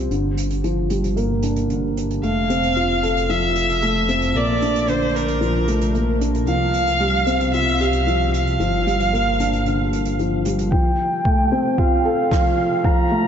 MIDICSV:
0, 0, Header, 1, 5, 480
1, 0, Start_track
1, 0, Key_signature, -1, "major"
1, 0, Tempo, 530973
1, 93, Time_signature, 4, 2, 24, 8
1, 12001, End_track
2, 0, Start_track
2, 0, Title_t, "Violin"
2, 0, Program_c, 0, 40
2, 2022, Note_on_c, 0, 77, 96
2, 2979, Note_on_c, 0, 76, 89
2, 2993, Note_off_c, 0, 77, 0
2, 3941, Note_on_c, 0, 74, 85
2, 3955, Note_off_c, 0, 76, 0
2, 4421, Note_on_c, 0, 72, 75
2, 4434, Note_off_c, 0, 74, 0
2, 4657, Note_on_c, 0, 70, 73
2, 4671, Note_off_c, 0, 72, 0
2, 5375, Note_off_c, 0, 70, 0
2, 5853, Note_on_c, 0, 77, 107
2, 6777, Note_off_c, 0, 77, 0
2, 6813, Note_on_c, 0, 76, 92
2, 7057, Note_on_c, 0, 77, 87
2, 7071, Note_off_c, 0, 76, 0
2, 7532, Note_off_c, 0, 77, 0
2, 7537, Note_on_c, 0, 77, 94
2, 9179, Note_off_c, 0, 77, 0
2, 9691, Note_on_c, 0, 79, 95
2, 10652, Note_on_c, 0, 77, 92
2, 10666, Note_off_c, 0, 79, 0
2, 11615, Note_on_c, 0, 82, 107
2, 11629, Note_off_c, 0, 77, 0
2, 12001, Note_off_c, 0, 82, 0
2, 12001, End_track
3, 0, Start_track
3, 0, Title_t, "Felt piano"
3, 0, Program_c, 1, 0
3, 0, Control_c, 1, 64, 127
3, 0, Note_on_c, 1, 53, 58
3, 0, Note_on_c, 1, 55, 64
3, 0, Note_on_c, 1, 60, 62
3, 0, Note_on_c, 1, 65, 64
3, 0, Note_on_c, 1, 67, 59
3, 96, Note_on_c, 1, 50, 63
3, 106, Control_c, 1, 64, 0
3, 108, Note_off_c, 1, 60, 0
3, 108, Note_off_c, 1, 67, 0
3, 110, Note_off_c, 1, 53, 0
3, 112, Note_off_c, 1, 55, 0
3, 113, Note_off_c, 1, 65, 0
3, 231, Note_off_c, 1, 50, 0
3, 259, Control_c, 1, 64, 127
3, 578, Note_on_c, 1, 53, 58
3, 803, Note_off_c, 1, 53, 0
3, 816, Note_on_c, 1, 55, 57
3, 1042, Note_off_c, 1, 55, 0
3, 1053, Note_on_c, 1, 58, 67
3, 1190, Note_off_c, 1, 58, 0
3, 1295, Note_on_c, 1, 62, 61
3, 1522, Note_off_c, 1, 62, 0
3, 1535, Note_on_c, 1, 50, 61
3, 1671, Note_off_c, 1, 50, 0
3, 2018, Note_on_c, 1, 57, 60
3, 2023, Control_c, 1, 64, 0
3, 2195, Control_c, 1, 64, 127
3, 2244, Note_off_c, 1, 57, 0
3, 2258, Note_on_c, 1, 60, 60
3, 2484, Note_off_c, 1, 60, 0
3, 2497, Note_on_c, 1, 65, 61
3, 2632, Note_off_c, 1, 65, 0
3, 2738, Note_on_c, 1, 69, 63
3, 2963, Note_off_c, 1, 69, 0
3, 2977, Note_on_c, 1, 53, 70
3, 3112, Note_off_c, 1, 53, 0
3, 3457, Note_on_c, 1, 57, 63
3, 3683, Note_off_c, 1, 57, 0
3, 3694, Note_on_c, 1, 60, 60
3, 3922, Note_off_c, 1, 60, 0
3, 3935, Note_on_c, 1, 58, 61
3, 3946, Control_c, 1, 64, 0
3, 4071, Note_off_c, 1, 58, 0
3, 4099, Control_c, 1, 64, 127
3, 4173, Note_on_c, 1, 62, 61
3, 4401, Note_off_c, 1, 62, 0
3, 4413, Note_on_c, 1, 50, 61
3, 4550, Note_off_c, 1, 50, 0
3, 4889, Note_on_c, 1, 53, 69
3, 5119, Note_off_c, 1, 53, 0
3, 5134, Note_on_c, 1, 57, 67
3, 5361, Note_off_c, 1, 57, 0
3, 5374, Note_on_c, 1, 58, 65
3, 5510, Note_off_c, 1, 58, 0
3, 5613, Note_on_c, 1, 62, 64
3, 5841, Note_off_c, 1, 62, 0
3, 5855, Note_on_c, 1, 53, 66
3, 5866, Control_c, 1, 64, 0
3, 5991, Note_off_c, 1, 53, 0
3, 6005, Control_c, 1, 64, 127
3, 6331, Note_on_c, 1, 55, 63
3, 6560, Note_off_c, 1, 55, 0
3, 6569, Note_on_c, 1, 60, 63
3, 6799, Note_off_c, 1, 60, 0
3, 6812, Note_on_c, 1, 65, 65
3, 6949, Note_off_c, 1, 65, 0
3, 7054, Note_on_c, 1, 67, 66
3, 7282, Note_off_c, 1, 67, 0
3, 7294, Note_on_c, 1, 53, 66
3, 7430, Note_off_c, 1, 53, 0
3, 7772, Note_on_c, 1, 53, 70
3, 7786, Control_c, 1, 64, 0
3, 7948, Control_c, 1, 64, 127
3, 8001, Note_off_c, 1, 53, 0
3, 8015, Note_on_c, 1, 55, 67
3, 8242, Note_off_c, 1, 55, 0
3, 8252, Note_on_c, 1, 58, 64
3, 8389, Note_off_c, 1, 58, 0
3, 8495, Note_on_c, 1, 62, 64
3, 8722, Note_off_c, 1, 62, 0
3, 8736, Note_on_c, 1, 50, 69
3, 8871, Note_off_c, 1, 50, 0
3, 9216, Note_on_c, 1, 53, 67
3, 9443, Note_off_c, 1, 53, 0
3, 9455, Note_on_c, 1, 55, 65
3, 9682, Note_off_c, 1, 55, 0
3, 9693, Note_on_c, 1, 53, 65
3, 9707, Control_c, 1, 64, 0
3, 9830, Note_off_c, 1, 53, 0
3, 9880, Control_c, 1, 64, 127
3, 10172, Note_on_c, 1, 57, 67
3, 10401, Note_off_c, 1, 57, 0
3, 10413, Note_on_c, 1, 60, 63
3, 10641, Note_off_c, 1, 60, 0
3, 10655, Note_on_c, 1, 65, 75
3, 10791, Note_off_c, 1, 65, 0
3, 10893, Note_on_c, 1, 69, 70
3, 11121, Note_off_c, 1, 69, 0
3, 11135, Note_on_c, 1, 53, 68
3, 11271, Note_off_c, 1, 53, 0
3, 11611, Note_on_c, 1, 53, 62
3, 11622, Control_c, 1, 64, 0
3, 11793, Control_c, 1, 64, 127
3, 11840, Note_off_c, 1, 53, 0
3, 11853, Note_on_c, 1, 57, 66
3, 12001, Note_off_c, 1, 57, 0
3, 12001, End_track
4, 0, Start_track
4, 0, Title_t, "Detuned saw bass"
4, 0, Program_c, 2, 39
4, 91, Note_on_c, 2, 31, 80
4, 1988, Note_off_c, 2, 31, 0
4, 2016, Note_on_c, 2, 29, 78
4, 3911, Note_off_c, 2, 29, 0
4, 3934, Note_on_c, 2, 34, 78
4, 5830, Note_off_c, 2, 34, 0
4, 5851, Note_on_c, 2, 36, 81
4, 7748, Note_off_c, 2, 36, 0
4, 7773, Note_on_c, 2, 31, 78
4, 9669, Note_off_c, 2, 31, 0
4, 12001, End_track
5, 0, Start_track
5, 0, Title_t, "Drums"
5, 100, Note_on_c, 9, 42, 39
5, 190, Note_off_c, 9, 42, 0
5, 338, Note_on_c, 9, 42, 69
5, 428, Note_off_c, 9, 42, 0
5, 456, Note_on_c, 9, 42, 45
5, 546, Note_off_c, 9, 42, 0
5, 578, Note_on_c, 9, 42, 41
5, 669, Note_off_c, 9, 42, 0
5, 813, Note_on_c, 9, 42, 61
5, 904, Note_off_c, 9, 42, 0
5, 940, Note_on_c, 9, 42, 43
5, 1030, Note_off_c, 9, 42, 0
5, 1058, Note_on_c, 9, 42, 41
5, 1148, Note_off_c, 9, 42, 0
5, 1289, Note_on_c, 9, 42, 66
5, 1379, Note_off_c, 9, 42, 0
5, 1411, Note_on_c, 9, 42, 44
5, 1502, Note_off_c, 9, 42, 0
5, 1536, Note_on_c, 9, 42, 38
5, 1627, Note_off_c, 9, 42, 0
5, 1783, Note_on_c, 9, 42, 60
5, 1874, Note_off_c, 9, 42, 0
5, 1903, Note_on_c, 9, 42, 40
5, 1994, Note_off_c, 9, 42, 0
5, 2017, Note_on_c, 9, 42, 39
5, 2107, Note_off_c, 9, 42, 0
5, 2260, Note_on_c, 9, 42, 60
5, 2351, Note_off_c, 9, 42, 0
5, 2381, Note_on_c, 9, 42, 43
5, 2471, Note_off_c, 9, 42, 0
5, 2503, Note_on_c, 9, 42, 34
5, 2593, Note_off_c, 9, 42, 0
5, 2740, Note_on_c, 9, 42, 57
5, 2830, Note_off_c, 9, 42, 0
5, 2864, Note_on_c, 9, 42, 46
5, 2954, Note_off_c, 9, 42, 0
5, 2978, Note_on_c, 9, 42, 42
5, 3069, Note_off_c, 9, 42, 0
5, 3215, Note_on_c, 9, 42, 66
5, 3306, Note_off_c, 9, 42, 0
5, 3339, Note_on_c, 9, 42, 47
5, 3429, Note_off_c, 9, 42, 0
5, 3455, Note_on_c, 9, 42, 41
5, 3545, Note_off_c, 9, 42, 0
5, 3693, Note_on_c, 9, 42, 64
5, 3784, Note_off_c, 9, 42, 0
5, 3812, Note_on_c, 9, 42, 45
5, 3902, Note_off_c, 9, 42, 0
5, 3934, Note_on_c, 9, 42, 33
5, 4024, Note_off_c, 9, 42, 0
5, 4178, Note_on_c, 9, 42, 65
5, 4268, Note_off_c, 9, 42, 0
5, 4301, Note_on_c, 9, 42, 49
5, 4391, Note_off_c, 9, 42, 0
5, 4410, Note_on_c, 9, 42, 41
5, 4500, Note_off_c, 9, 42, 0
5, 4664, Note_on_c, 9, 42, 60
5, 4754, Note_off_c, 9, 42, 0
5, 4774, Note_on_c, 9, 42, 46
5, 4864, Note_off_c, 9, 42, 0
5, 4900, Note_on_c, 9, 42, 38
5, 4991, Note_off_c, 9, 42, 0
5, 5134, Note_on_c, 9, 42, 66
5, 5224, Note_off_c, 9, 42, 0
5, 5254, Note_on_c, 9, 42, 52
5, 5345, Note_off_c, 9, 42, 0
5, 5377, Note_on_c, 9, 42, 37
5, 5467, Note_off_c, 9, 42, 0
5, 5617, Note_on_c, 9, 42, 64
5, 5707, Note_off_c, 9, 42, 0
5, 5737, Note_on_c, 9, 42, 47
5, 5828, Note_off_c, 9, 42, 0
5, 5848, Note_on_c, 9, 42, 39
5, 5938, Note_off_c, 9, 42, 0
5, 6090, Note_on_c, 9, 42, 61
5, 6181, Note_off_c, 9, 42, 0
5, 6210, Note_on_c, 9, 42, 48
5, 6301, Note_off_c, 9, 42, 0
5, 6330, Note_on_c, 9, 42, 37
5, 6420, Note_off_c, 9, 42, 0
5, 6571, Note_on_c, 9, 42, 69
5, 6661, Note_off_c, 9, 42, 0
5, 6696, Note_on_c, 9, 42, 45
5, 6786, Note_off_c, 9, 42, 0
5, 6810, Note_on_c, 9, 42, 38
5, 6901, Note_off_c, 9, 42, 0
5, 7056, Note_on_c, 9, 42, 59
5, 7146, Note_off_c, 9, 42, 0
5, 7169, Note_on_c, 9, 42, 47
5, 7260, Note_off_c, 9, 42, 0
5, 7306, Note_on_c, 9, 42, 37
5, 7396, Note_off_c, 9, 42, 0
5, 7538, Note_on_c, 9, 42, 68
5, 7629, Note_off_c, 9, 42, 0
5, 7658, Note_on_c, 9, 42, 40
5, 7749, Note_off_c, 9, 42, 0
5, 7776, Note_on_c, 9, 42, 37
5, 7866, Note_off_c, 9, 42, 0
5, 8022, Note_on_c, 9, 42, 61
5, 8112, Note_off_c, 9, 42, 0
5, 8138, Note_on_c, 9, 42, 47
5, 8228, Note_off_c, 9, 42, 0
5, 8267, Note_on_c, 9, 42, 42
5, 8357, Note_off_c, 9, 42, 0
5, 8496, Note_on_c, 9, 42, 66
5, 8587, Note_off_c, 9, 42, 0
5, 8616, Note_on_c, 9, 42, 46
5, 8706, Note_off_c, 9, 42, 0
5, 8731, Note_on_c, 9, 42, 45
5, 8822, Note_off_c, 9, 42, 0
5, 8977, Note_on_c, 9, 42, 62
5, 9067, Note_off_c, 9, 42, 0
5, 9088, Note_on_c, 9, 42, 49
5, 9179, Note_off_c, 9, 42, 0
5, 9212, Note_on_c, 9, 42, 37
5, 9302, Note_off_c, 9, 42, 0
5, 9449, Note_on_c, 9, 42, 72
5, 9539, Note_off_c, 9, 42, 0
5, 9572, Note_on_c, 9, 42, 42
5, 9662, Note_off_c, 9, 42, 0
5, 9692, Note_on_c, 9, 36, 95
5, 9782, Note_off_c, 9, 36, 0
5, 10172, Note_on_c, 9, 36, 91
5, 10262, Note_off_c, 9, 36, 0
5, 10652, Note_on_c, 9, 36, 89
5, 10742, Note_off_c, 9, 36, 0
5, 11132, Note_on_c, 9, 36, 86
5, 11134, Note_on_c, 9, 37, 59
5, 11223, Note_off_c, 9, 36, 0
5, 11224, Note_off_c, 9, 37, 0
5, 11612, Note_on_c, 9, 36, 101
5, 11702, Note_off_c, 9, 36, 0
5, 12001, End_track
0, 0, End_of_file